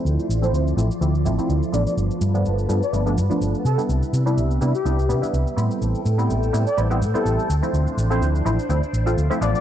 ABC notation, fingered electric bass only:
X:1
M:4/4
L:1/8
Q:"Swing 16ths" 1/4=125
K:Ddor
V:1 name="Fingered electric bass" clef=bass
D,, A,,, D,, A,,, D,, A,,, D,, A,,, | G,,, G,, G,,, G,, G,,, G,, G,,, C, | C,, C, C,, C, C,, C, C,, A,, | A,,, A,, A,,, A,, A,,, A,, A,,, D,, |
D,, A,,, D,, A,,, D,, A,,, D,, A,,, |]